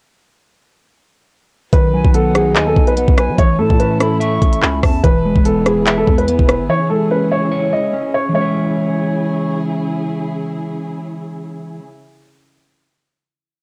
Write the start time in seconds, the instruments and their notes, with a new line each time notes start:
1.73 808-style bass B1, clean electric guitar D#3, string section F#3 B3 D#4, grand piano B4, kick, closed hi-hat
1.93 clean electric guitar F#3, flute G#5
2.04 808-style bass B1, kick
2.14 clean electric guitar B3, grand piano A4, flute F#5, closed hi-hat
2.35 clean electric guitar D#4, grand piano G#4, cross-stick, closed hi-hat
2.55 808-style bass D#2, clean electric guitar D#5, flute G#5, clap, closed hi-hat
2.67 grand piano A4
2.76 808-style bass B1, kick
2.87 grand piano B4, closed hi-hat
2.97 clean electric guitar B3, flute F#5, closed hi-hat
3.08 808-style bass B1, kick
3.17 grand piano B4, flute G#5, cross-stick, closed hi-hat
3.29 808-style bass F#3
3.38 808-style bass A1, clean electric guitar E3, string section A3 C#4 E4, grand piano C#5, kick, closed hi-hat
3.58 808-style bass A2, clean electric guitar A3, grand piano A4, flute A5
3.70 808-style bass A2, kick
3.80 clean electric guitar C#4, grand piano B4, closed hi-hat
4.00 clean electric guitar E4, grand piano A4, flute B5, cross-stick, closed hi-hat
4.20 clean electric guitar E5, flute C#6, closed hi-hat
4.42 808-style bass A1, kick, closed hi-hat
4.53 closed hi-hat
4.62 808-style bass C#2, clean electric guitar C#4, flute B5, clap
4.83 808-style bass E2, flute A5, kick, cross-stick, open hi-hat
5.03 808-style bass E1, clean electric guitar E3, string section E3 E4 G#4 B4, grand piano B4, kick, closed hi-hat
5.25 clean electric guitar G#3
5.36 808-style bass E1, kick
5.45 clean electric guitar B3, grand piano A4, closed hi-hat
5.66 clean electric guitar E4, grand piano G#4, cross-stick, closed hi-hat
5.86 clean electric guitar E5, clap, closed hi-hat
5.98 grand piano A4
6.07 808-style bass E2, kick
6.18 grand piano B4, closed hi-hat
6.28 clean electric guitar B3, closed hi-hat
6.39 808-style bass E1, kick
6.49 grand piano B4, cross-stick, closed hi-hat
6.60 808-style bass G#1
6.69 string section C#3 C#4, clean electric guitar E3, grand piano C#5
6.90 clean electric guitar G#3, grand piano A4
7.11 clean electric guitar C#4, grand piano B4
7.31 clean electric guitar E4, grand piano C#5
7.52 clean electric guitar C#5
7.73 grand piano D#5
7.93 clean electric guitar C#4
8.14 grand piano C#5
8.29 clean electric guitar E3 G#3
8.35 string section C#3 C#4 E4 G#4, clean electric guitar C#4, grand piano C#5
8.41 clean electric guitar E4